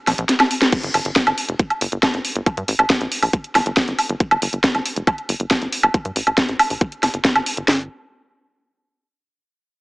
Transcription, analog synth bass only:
0.07 A#1
0.18 A#1
0.83 G1
0.94 G1
1.05 G1
1.27 G1
1.49 F1
1.81 G1
1.92 G1
2.14 G1
2.36 G1
2.57 G2
2.68 A1
2.79 A1
3.01 A#1
3.22 A#1
3.55 G1
3.66 G1
3.88 G1
4.09 G1
4.31 G1
4.42 G1
4.53 G1
4.75 G1
4.96 F1
5.29 G1
5.40 G1
5.62 G1
5.83 G1
6.05 G2
6.16 A1
6.27 A1
6.49 A#1
6.70 A#1
7.03 G1
7.14 G1
7.36 G1
7.57 G1
7.68 G1

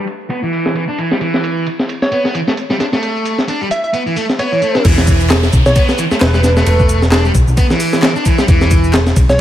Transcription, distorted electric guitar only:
0.30 B3
0.43 E3
0.75 E3
0.88 D4
0.98 E3
1.11 G3
1.21 E3
2.12 B3
2.25 B3
2.34 E3
2.47 A3
2.70 G3
2.80 D4
2.93 A3
3.48 D4
3.61 G3
3.93 B3
4.07 E3
4.16 A3
4.39 B3
4.52 E3
4.62 A3
4.75 D4
4.85 E3
5.76 B3
5.89 B3
5.99 E3
6.12 A3
6.34 G3
6.44 D4
6.57 A3
7.12 D4
7.25 G3
7.57 B3
7.70 E3
8.03 E3
8.16 D4
8.25 E3
8.38 G3
8.48 E3

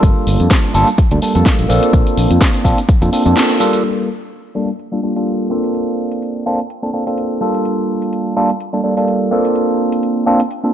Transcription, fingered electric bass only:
0.03 G1
0.27 G1
0.40 F2
0.75 G1
0.98 muted fingered electric bass stroke
1.12 D2
1.35 F2
1.59 A#1
1.70 A#1
1.94 A#1
2.17 A#1
2.31 F2
2.65 A#1
3.02 F2
3.26 F2

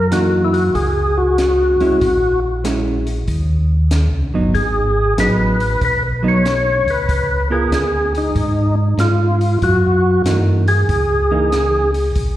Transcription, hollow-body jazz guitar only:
0.11 E3 A#3 D#4
1.80 G#3 C#4 E4
2.64 G#3 C#4 E4
4.34 F#3 B3 D#4
5.18 F#3 B3 D#4
6.23 F#3 B3 D#4
7.50 B3 F4 A#4
10.27 E3 A#3 D#4
11.31 E3 A#3 D#4

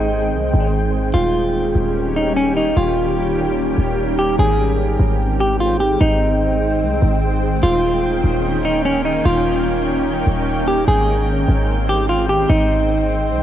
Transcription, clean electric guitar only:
Already playing: D#4
1.14 F4
2.16 D#4
2.36 C#4
2.57 D#4
2.77 F4
4.19 G4
4.39 G#4
5.41 G4
5.60 F4
5.80 G4
6.01 D#4
7.63 F4
8.65 D#4
8.85 C#4
9.05 D#4
9.25 F4
10.68 G4
10.88 G#4
11.89 G4
12.09 F4
12.29 G4
12.49 D#4

